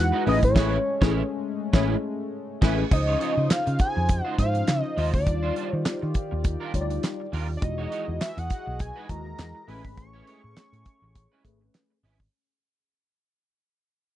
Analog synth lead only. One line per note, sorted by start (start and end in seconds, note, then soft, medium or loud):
0.00 0.24 F#5 loud
0.29 0.43 D#5 loud
0.44 1.28 C#5 medium
2.93 3.53 D#5 loud
3.52 3.80 F5 loud
3.81 4.23 G#5 loud
4.23 4.35 F#5 loud
4.39 4.81 F5 loud
4.81 4.98 D#5 loud
4.98 5.14 D#5 loud
5.14 5.74 D5 medium
5.74 5.98 C5 medium
7.57 7.65 D5 medium
7.63 8.21 D#5 medium
8.22 8.40 E5 medium
8.38 8.82 F#5 loud
8.81 9.11 G#5 loud
9.09 9.69 A#5 loud
9.68 9.97 B5 loud
9.97 11.99 C#6 loud